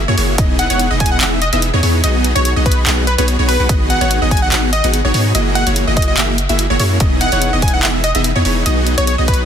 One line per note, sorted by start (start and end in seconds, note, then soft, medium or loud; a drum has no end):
0.08 0.16 F#2 loud
0.08 0.16 A#3 loud
0.08 0.16 E4 medium
0.08 0.16 F#4 medium
0.08 0.16 G#4 medium
0.08 0.15 C#5 loud
0.08 0.16 C#5 loud
0.18 0.37 F#1 loud
0.18 0.36 A#3 loud
0.18 0.36 E4 medium
0.18 0.36 F#4 medium
0.18 0.36 G#4 medium
0.18 0.36 C#5 loud
0.18 open hi-hat medium
0.38 0.68 B3 loud
0.38 0.68 D#4 medium
0.38 0.68 E4 medium
0.38 0.68 G#4 medium
0.38 0.68 D#5 loud
0.38 kick loud
0.38 closed hi-hat medium
0.59 0.91 F#5 medium
0.59 closed hi-hat medium
0.70 0.89 E1 loud
0.70 0.88 B3 loud
0.70 0.88 D#4 medium
0.70 0.88 E4 medium
0.70 0.88 G#4 medium
0.70 0.88 C#5 loud
0.70 closed hi-hat medium
0.79 closed hi-hat medium
0.91 1.19 E1 loud
0.91 1.19 B3 medium
0.91 1.19 D#4 medium
0.91 1.19 E4 medium
0.91 1.19 G#4 medium
0.91 1.19 D#5 loud
1.00 1.09 G#5 loud
1.00 kick medium
1.00 closed hi-hat medium
1.06 closed hi-hat medium
1.12 1.18 F#5 medium
1.21 1.51 E1 loud
1.21 1.40 B3 loud
1.21 1.40 D#4 medium
1.21 1.40 E4 medium
1.21 1.40 G#4 medium
1.21 1.39 E5 loud
1.21 1.40 E5 loud
1.21 1.28 F#5 medium
1.21 clap loud
1.21 closed hi-hat medium
1.42 1.49 D#5 medium
1.42 closed hi-hat medium
1.53 1.71 E1 medium
1.53 1.69 B3 medium
1.53 1.69 D#4 medium
1.53 1.69 E4 medium
1.53 1.69 G#4 medium
1.53 1.59 D#5 medium
1.53 1.69 E5 medium
1.53 closed hi-hat medium
1.62 closed hi-hat medium
1.74 1.81 E2 loud
1.74 1.81 B3 loud
1.74 1.81 D#4 medium
1.74 1.81 E4 medium
1.74 1.81 G#4 medium
1.74 1.81 C#5 loud
1.83 2.02 E2 loud
1.83 2.02 B3 loud
1.83 2.02 D#4 medium
1.83 2.02 E4 medium
1.83 2.02 G#4 medium
1.83 2.02 C#5 loud
1.83 open hi-hat medium
2.04 2.34 B1 loud
2.04 2.33 B3 loud
2.04 2.33 D#4 medium
2.04 2.33 F#4 medium
2.04 2.33 G#4 medium
2.04 2.33 D#5 loud
2.04 closed hi-hat medium
2.24 closed hi-hat medium
2.35 2.54 B1 loud
2.35 2.54 B3 loud
2.35 2.54 D#4 medium
2.35 2.54 F#4 medium
2.35 2.54 G#4 medium
2.35 2.42 C#5 medium
2.35 2.54 C#5 loud
2.35 closed hi-hat medium
2.45 2.52 C#5 medium
2.45 closed hi-hat medium
2.56 2.85 B1 loud
2.56 2.84 B3 medium
2.56 2.84 D#4 medium
2.56 2.84 F#4 medium
2.56 2.84 G#4 medium
2.56 2.84 D#5 loud
2.66 2.79 B4 loud
2.66 kick medium
2.66 closed hi-hat soft
2.72 closed hi-hat medium
2.87 3.16 B1 loud
2.87 3.05 B3 loud
2.87 3.05 D#4 medium
2.87 3.05 F#4 medium
2.87 3.05 G#4 medium
2.87 3.05 F#5 loud
2.87 clap loud
2.87 closed hi-hat medium
3.07 3.14 B4 medium
3.07 closed hi-hat medium
3.18 3.37 B1 loud
3.18 3.37 B3 loud
3.18 3.37 D#4 medium
3.18 3.37 F#4 medium
3.18 3.37 G#4 medium
3.18 3.25 B4 medium
3.18 3.36 C#5 loud
3.18 3.37 C#5 loud
3.18 closed hi-hat medium
3.28 closed hi-hat medium
3.39 3.58 B1 loud
3.39 3.57 B3 medium
3.39 3.57 D#4 medium
3.39 3.57 F#4 medium
3.39 3.57 G#4 medium
3.39 3.57 C#5 loud
3.48 3.74 B4 medium
3.48 open hi-hat medium
3.60 3.67 B1 loud
3.60 3.67 B3 medium
3.60 3.67 D#4 medium
3.60 3.67 F#4 medium
3.60 3.67 G#4 medium
3.60 3.67 F#5 medium
3.69 3.99 G#1 loud
3.69 3.99 B3 loud
3.69 3.99 D#4 medium
3.69 3.99 F#4 medium
3.69 3.99 G#4 medium
3.69 3.98 D#5 loud
3.69 3.99 D#5 loud
3.69 kick loud
3.69 closed hi-hat medium
3.90 4.22 F#5 loud
3.90 closed hi-hat medium
4.01 4.20 G#1 loud
4.01 4.19 B3 loud
4.01 4.19 D#4 medium
4.01 4.19 F#4 medium
4.01 4.19 G#4 medium
4.01 4.19 C#5 loud
4.01 closed hi-hat medium
4.11 closed hi-hat medium
4.22 4.50 G#1 loud
4.22 4.50 B3 medium
4.22 4.50 D#4 medium
4.22 4.50 F#4 medium
4.22 4.50 G#4 medium
4.22 4.50 D#5 loud
4.31 4.40 G#5 loud
4.31 kick medium
4.31 closed hi-hat soft
4.37 closed hi-hat medium
4.42 4.49 F#5 medium
4.52 4.82 G#1 loud
4.52 4.71 B3 loud
4.52 4.71 D#4 medium
4.52 4.71 F#4 medium
4.52 4.71 G#4 medium
4.52 4.59 F#5 medium
4.52 4.71 F#5 loud
4.52 clap loud
4.52 closed hi-hat medium
4.73 4.86 D#5 loud
4.73 closed hi-hat medium
4.84 5.02 G#1 loud
4.84 5.00 B3 medium
4.84 5.00 D#4 medium
4.84 5.00 F#4 medium
4.84 5.00 G#4 medium
4.84 5.00 F#5 medium
4.84 closed hi-hat medium
4.94 closed hi-hat medium
5.05 5.12 G#1 loud
5.05 5.12 B3 loud
5.05 5.12 D#4 medium
5.05 5.12 F#4 medium
5.05 5.12 G#4 medium
5.05 5.12 C#5 loud
5.14 5.33 G#2 medium
5.14 5.33 B3 loud
5.14 5.33 D#4 medium
5.14 5.33 F#4 medium
5.14 5.33 G#4 medium
5.14 5.33 C#5 loud
5.14 open hi-hat medium
5.35 5.65 F#1 loud
5.35 5.64 A#3 loud
5.35 5.64 E4 medium
5.35 5.64 F#4 medium
5.35 5.64 G#4 medium
5.35 5.64 D#5 loud
5.35 closed hi-hat medium
5.55 5.69 F#5 loud
5.55 closed hi-hat medium
5.67 5.85 F#1 loud
5.67 5.85 A#3 loud
5.67 5.85 E4 medium
5.67 5.85 F#4 medium
5.67 5.85 G#4 medium
5.67 5.85 C#5 loud
5.67 closed hi-hat medium
5.76 closed hi-hat medium
5.87 6.16 F#1 loud
5.87 6.15 A#3 medium
5.87 6.15 E4 medium
5.87 6.15 F#4 medium
5.87 6.15 G#4 medium
5.87 6.15 D#5 loud
5.97 6.04 D#5 medium
5.97 kick medium
5.97 closed hi-hat soft
6.02 closed hi-hat medium
6.08 6.14 D#5 medium
6.17 6.47 F#1 loud
6.17 6.36 A#3 loud
6.17 6.36 E4 medium
6.17 6.36 F#4 medium
6.17 6.36 G#4 medium
6.17 6.36 E5 loud
6.17 clap loud
6.17 closed hi-hat medium
6.38 closed hi-hat medium
6.49 6.68 F#1 medium
6.49 6.66 A#3 medium
6.49 6.66 E4 medium
6.49 6.66 F#4 medium
6.49 6.66 G#4 medium
6.49 6.66 E5 medium
6.49 closed hi-hat medium
6.59 closed hi-hat medium
6.70 6.78 F#1 loud
6.70 6.78 A#3 loud
6.70 6.78 E4 medium
6.70 6.78 F#4 medium
6.70 6.78 G#4 medium
6.70 6.77 C#5 loud
6.70 6.78 C#5 loud
6.80 6.99 F#2 loud
6.80 6.98 A#3 loud
6.80 6.98 E4 medium
6.80 6.98 F#4 medium
6.80 6.98 G#4 medium
6.80 6.98 C#5 loud
6.80 open hi-hat medium
7.00 7.30 E1 loud
7.00 7.30 B3 loud
7.00 7.30 D#4 medium
7.00 7.30 E4 medium
7.00 7.30 G#4 medium
7.00 7.30 D#5 loud
7.00 kick loud
7.00 closed hi-hat medium
7.21 7.53 F#5 loud
7.21 closed hi-hat medium
7.32 7.51 E1 loud
7.32 7.50 B3 loud
7.32 7.50 D#4 medium
7.32 7.50 E4 medium
7.32 7.50 G#4 medium
7.32 7.50 C#5 loud
7.32 closed hi-hat medium
7.42 closed hi-hat medium
7.53 7.81 E1 loud
7.53 7.81 B3 medium
7.53 7.81 D#4 medium
7.53 7.81 E4 medium
7.53 7.81 G#4 medium
7.53 7.81 D#5 loud
7.62 7.71 G#5 medium
7.62 kick medium
7.62 closed hi-hat soft
7.68 closed hi-hat medium
7.74 7.80 F#5 medium
7.83 8.13 E1 loud
7.83 8.02 B3 loud
7.83 8.02 D#4 medium
7.83 8.02 E4 medium
7.83 8.02 G#4 medium
7.83 8.02 E5 loud
7.83 7.90 F#5 medium
7.83 clap loud
7.83 closed hi-hat medium
8.04 8.11 D#5 medium
8.04 closed hi-hat medium
8.15 8.34 E1 loud
8.15 8.31 B3 medium
8.15 8.31 D#4 medium
8.15 8.31 E4 medium
8.15 8.31 G#4 medium
8.15 8.21 D#5 medium
8.15 8.31 E5 medium
8.15 closed hi-hat medium
8.24 closed hi-hat medium
8.36 8.44 E2 loud
8.36 8.43 B3 loud
8.36 8.43 D#4 medium
8.36 8.43 E4 medium
8.36 8.43 G#4 medium
8.36 8.43 C#5 loud
8.45 8.64 E1 loud
8.45 8.64 B3 loud
8.45 8.64 D#4 medium
8.45 8.64 E4 medium
8.45 8.64 G#4 medium
8.45 8.64 C#5 loud
8.45 open hi-hat medium
8.66 8.96 B1 loud
8.66 8.95 B3 loud
8.66 8.95 D#4 medium
8.66 8.95 F#4 medium
8.66 8.95 G#4 medium
8.66 8.95 D#5 loud
8.66 closed hi-hat medium
8.87 closed hi-hat medium
8.98 9.16 B1 loud
8.98 9.16 B3 loud
8.98 9.16 D#4 medium
8.98 9.16 F#4 medium
8.98 9.16 G#4 medium
8.98 9.04 C#5 medium
8.98 9.16 C#5 loud
8.98 closed hi-hat medium
9.07 9.14 C#5 medium
9.07 closed hi-hat medium
9.18 9.45 B1 loud
9.18 9.45 B3 medium
9.18 9.45 D#4 medium
9.18 9.45 F#4 medium
9.18 9.45 G#4 medium
9.18 9.45 D#5 loud
9.28 9.41 B4 loud
9.28 kick medium
9.28 closed hi-hat soft
9.34 closed hi-hat medium